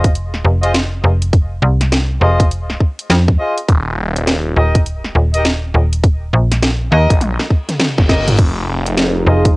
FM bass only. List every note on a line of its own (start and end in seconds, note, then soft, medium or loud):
0.00 0.26 F1 medium
0.26 0.43 E1 medium
0.45 1.02 F1 loud
1.04 1.61 F1 loud
1.62 2.19 C2 loud
2.21 2.78 F1 loud
3.10 3.37 F2 loud
4.56 5.13 D#1 medium
5.15 5.72 D#1 loud
5.74 6.31 D#1 loud
6.33 6.90 A#1 loud
6.92 7.07 D#2 medium
9.27 9.57 F1 loud